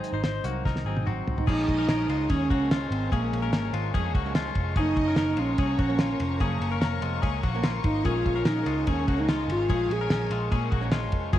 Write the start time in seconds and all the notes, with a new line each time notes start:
Already playing: G#2 D#3 F#3 C4 D#4 G#4 C5
0.04 closed hi-hat
0.12 G#1 F#3 C4 D#4 C5
0.24 D#4 C5, snare, closed hi-hat
0.43 C2 D#3 F#3 A#3 C4 D#4 F#4, closed hi-hat
0.65 C2 D#4 A#4, kick, snare
0.76 snare
0.85 G#1 D#3 F#3 C4 D#4 G#4
0.97 high tom
1.06 D#3 F#3 C4 D#4 F#4, mid tom
1.27 floor tom
1.37 F#3 C4 D#4, floor tom
1.47 A#1 A#2 F3 G#3 C#4 D#4 G#4 A#4 D#5 F5 G#5 C#6, kick, crash
1.68 A#1, kick, ride
1.78 F3 G#3 C#4 A#4
1.88 A#1 C#4 A#4, snare, ride
1.99 F3 G#3 C#4
2.09 C#2 G#3 F4, ride
2.28 D#2 A#2 F3 G#3 C#4 G#4 C#5, kick, ride
2.50 C#2 A#3 F#4, kick, ride
2.60 A#2 F3 G#3 C#4
2.71 G#3 F4, snare, ride
2.81 F3 G#3 C#4
2.90 G#1 C4 C5, ride
3.11 A#1 A#2 F3 G#3 A#3 C#4 G#4 A#4, kick, ride
3.32 A#1 A#3 A#4, ride
3.41 F3 G#3 C#4 A#4
3.53 G#1 C#4 A#4, snare, ride
3.62 F3 G#3 C#4
3.73 G#1 G#3 F4, ride
3.94 F2 A#2 F3 G#3 C#4 G#4, kick, ride
4.14 C#2 A#3 F#4, kick, ride
4.25 A#2 F3 G#3 C#4
4.35 G#3 F4, snare, ride
4.47 F3 G#3 C#4
4.55 F1, kick, ride
4.76 F#1 F#2 C#3 F3 A#3 C#4 D#4 G#4 A#4 D#5 A#5, kick, ride
4.96 F#1, kick, ride
5.07 F3 A#3 C#4 A#4
5.16 F#1 C#4 A#4, snare, ride
5.27 F3 A#3 C#4
5.37 A#1 G#3 C#4 F4 C#5, ride
5.57 C2 C#3 F3 A#3 C#4 G#4, kick, ride
5.78 A#1 A#3 F#4, kick, ride
5.88 F#2 C#3 F3 A#3 C#4
5.99 A#3 F4, snare, ride
6.09 F3 A#3 C#4
6.20 F1, ride
6.40 F#1 F#2 C#3 F3 A#3 C#4 G#4 A#4, kick, ride
6.60 F#1 A#3 A#4, ride
6.71 F3 A#3 C#4 A#4
6.81 F1 C#4 A#4, snare, ride
6.92 F3 A#3 C#4
7.01 F1 G#3 F4, ride
7.22 C#2 C#3 F3 A#3 C#4 G#4, kick, ride
7.26 C#4
7.43 A#1 A#3 F#4, kick, ride
7.54 F#2 C#3 F3 A#3 C#4
7.63 A#3 F4, snare, ride
7.74 F3 A#3 C#4
7.84 G#1 D#4 D#5, kick, ride
8.04 A#1 A#2 F3 G#3 C#4 F4 G#4 A#4 F5 G#5, kick, ride
8.25 A#1, kick, ride
8.35 F3 G#3 C#4 A#4
8.45 A#1 C#4 D#4 A#4 D#5, snare, ride
8.56 F3 G#3 C#4
8.66 C#2 G#3 F4, ride
8.86 D#2 A#2 F3 G#3 C#4 G#4 C#5, kick, ride
9.08 C#2 A#3 F#4, kick, ride
9.16 A#2 F3 G#3 C#4 D#4
9.20 D#5
9.29 G#3 F4, snare, ride
9.36 F3 G#3 C#4
9.48 G#1 F4 F5, ride
9.67 A#1 A#2 F3 G#3 C#4 G#4, kick, ride
9.72 F4 F5
9.89 A#1 G#4 G#5, ride
9.99 F3 G#3 C#4 A#4
10.10 A#1 C#4 A#4, snare, ride
10.20 F3 G#3 C#4
10.30 A#1 G#3 F4, ride
10.50 A#2 F3 G#3 C#4 G#4, kick, ride
10.71 A#1 A#3 F#4, kick, ride
10.81 A#2 F3 G#3 C#4
10.92 G#3 F4, snare, ride
11.02 F3 G#3 C#4
11.12 F1, kick, ride
11.32 F#1 F#2 C#3 F#3 A#3 C#4 F4 G#4 A#4 F5 A#5 C#6, kick, ride